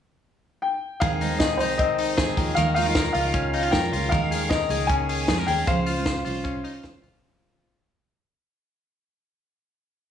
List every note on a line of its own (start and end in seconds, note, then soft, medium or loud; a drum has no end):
0.62 1.02 G5 medium
1.00 1.60 D#2 medium
1.00 2.36 D#3 medium
1.00 1.20 D#3 medium
1.00 1.21 G#3 medium
1.00 1.21 C4 medium
1.00 1.41 G#4 medium
1.00 1.22 C5 medium
1.00 1.41 F5 medium
1.00 kick loud
1.00 closed hi-hat medium
1.21 1.31 D#3 medium
1.21 1.31 G#3 medium
1.21 1.31 C4 medium
1.21 1.59 D#4 medium
1.21 1.30 C5 medium
1.21 open hi-hat medium
1.31 1.59 G#3 soft
1.31 1.60 C4 soft
1.31 1.60 C5 soft
1.38 2.17 G#4 medium
1.38 1.59 D#5 medium
1.38 kick loud
1.38 snare medium
1.38 closed hi-hat medium
1.57 2.18 C2 medium
1.57 2.16 D#3 medium
1.57 2.18 G#3 medium
1.57 2.18 C4 medium
1.57 1.98 D#4 medium
1.57 1.62 C5 medium
1.57 open hi-hat medium
1.62 2.19 C5 medium
1.78 2.42 C4 medium
1.78 2.58 D#5 medium
1.78 kick medium
1.78 closed hi-hat medium
1.98 2.42 D#4 soft
1.98 open hi-hat medium
2.17 2.35 F2 medium
2.17 2.37 D#3 medium
2.17 2.37 G#3 medium
2.17 2.38 C4 medium
2.17 2.57 G#4 medium
2.17 2.38 C5 medium
2.17 kick loud
2.17 snare loud
2.17 closed hi-hat medium
2.37 2.54 D#2 medium
2.37 2.56 D#3 medium
2.37 2.56 G#3 medium
2.37 2.56 A#3 medium
2.37 2.57 F4 medium
2.37 2.58 C#5 medium
2.37 kick medium
2.37 open hi-hat medium
2.55 3.13 D#2 medium
2.55 2.76 D#3 medium
2.55 4.10 D#3 medium
2.55 2.76 G#3 medium
2.55 2.75 A#3 medium
2.55 2.76 F4 medium
2.55 2.96 A#4 medium
2.55 2.60 F5 medium
2.55 closed hi-hat medium
2.59 2.77 C#5 medium
2.74 2.87 G#3 medium
2.74 2.86 A#3 medium
2.74 2.86 D#4 medium
2.74 2.87 F4 medium
2.74 3.11 F5 medium
2.74 open hi-hat medium
2.79 2.85 C#5 medium
2.86 3.16 G#3 soft
2.86 3.13 F4 soft
2.86 3.16 F4 soft
2.86 3.16 C#5 soft
2.95 3.71 A#4 medium
2.95 kick loud
2.95 snare medium
2.95 closed hi-hat medium
3.13 3.70 C#2 medium
3.13 3.72 A#3 medium
3.13 3.54 F4 medium
3.13 3.74 F5 medium
3.13 open hi-hat medium
3.17 3.74 G#3 medium
3.17 3.74 F4 medium
3.17 3.76 C#5 medium
3.34 4.89 C#4 medium
3.34 kick medium
3.34 closed hi-hat medium
3.54 3.63 D#4 medium
3.54 open hi-hat medium
3.63 3.91 F4 soft
3.71 3.90 F2 medium
3.71 3.93 G#3 medium
3.71 3.92 A#3 medium
3.71 4.11 A#4 medium
3.71 4.12 G5 medium
3.71 kick loud
3.71 snare loud
3.71 closed hi-hat medium
3.75 3.94 F4 medium
3.75 3.94 C#5 medium
3.93 4.12 C#2 medium
3.93 4.13 G#3 medium
3.93 4.13 A#3 medium
3.93 4.16 F4 medium
3.93 4.14 F4 medium
3.93 4.14 C#5 medium
3.93 open hi-hat medium
4.09 4.68 D#2 medium
4.09 5.67 D#3 medium
4.09 4.32 D#3 medium
4.09 4.50 A#4 medium
4.09 4.47 F5 medium
4.09 kick loud
4.09 closed hi-hat medium
4.14 4.32 G#3 medium
4.14 4.31 A#3 medium
4.14 4.33 G#4 medium
4.14 4.33 C#5 medium
4.31 4.42 G#3 medium
4.31 4.42 A#3 medium
4.31 4.70 G#4 medium
4.31 4.42 G#4 medium
4.31 4.41 C#5 medium
4.31 open hi-hat medium
4.42 4.69 G#3 soft
4.42 4.70 G#4 soft
4.42 4.71 C#5 soft
4.49 5.28 A#4 medium
4.49 4.86 D#5 medium
4.49 kick loud
4.49 snare medium
4.49 closed hi-hat medium
4.69 5.25 C#2 loud
4.69 5.28 G#3 medium
4.69 5.26 A#3 medium
4.69 5.09 G#4 medium
4.69 5.29 G#4 medium
4.69 5.29 C#5 medium
4.69 open hi-hat medium
4.87 6.09 C#4 medium
4.87 5.49 G#5 loud
4.87 kick medium
4.87 closed hi-hat medium
5.09 5.29 G#4 medium
5.09 open hi-hat medium
5.27 5.45 F2 medium
5.27 5.48 G#3 medium
5.27 5.47 A#3 medium
5.27 5.38 G#4 medium
5.27 5.48 G#4 medium
5.27 5.49 C#5 medium
5.27 kick loud
5.27 snare loud
5.27 closed hi-hat medium
5.38 5.67 A#4 medium
5.47 5.65 D#2 medium
5.47 5.67 G#3 medium
5.47 5.68 A#3 medium
5.47 5.86 G#4 medium
5.47 5.68 G#4 medium
5.47 5.69 C#5 medium
5.47 5.67 G5 loud
5.47 open hi-hat medium
5.67 6.23 C#2 loud
5.67 5.87 C#3 medium
5.67 5.87 F3 medium
5.67 5.86 G#3 medium
5.67 5.87 C#4 medium
5.67 5.87 F4 medium
5.67 6.06 C5 medium
5.67 5.88 C5 medium
5.67 6.80 F5 medium
5.67 kick loud
5.67 closed hi-hat medium
5.86 5.97 G#3 medium
5.86 5.97 C#4 medium
5.86 6.24 F4 medium
5.86 5.97 F4 medium
5.86 5.96 C5 medium
5.86 open hi-hat medium
5.97 6.25 G#3 soft
5.97 6.25 C#4 soft
5.97 6.26 F4 medium
5.97 6.26 C5 medium
6.06 6.83 C5 medium
6.06 kick loud
6.06 snare medium
6.06 closed hi-hat medium
6.25 6.81 C2 medium
6.25 6.83 G#3 medium
6.25 6.84 C#4 medium
6.25 6.64 F4 medium
6.25 6.85 F4 medium
6.25 6.85 C5 medium
6.25 open hi-hat medium
6.44 7.76 C#4 medium
6.44 kick medium
6.44 closed hi-hat medium
6.64 6.74 D#4 medium
6.64 open hi-hat medium
6.74 7.01 F4 soft
6.83 7.01 D#2 loud
6.83 7.02 G#3 medium
6.83 7.04 C#4 medium
6.83 7.04 F4 medium
6.83 7.76 C5 medium
6.83 7.04 C5 medium
6.83 kick loud
6.83 snare loud
6.83 closed hi-hat medium
7.02 7.20 C2 medium
7.02 7.23 G#3 medium
7.02 7.23 C#4 medium
7.02 7.76 F4 medium
7.02 7.24 F4 medium
7.02 open hi-hat medium
7.06 7.24 C5 medium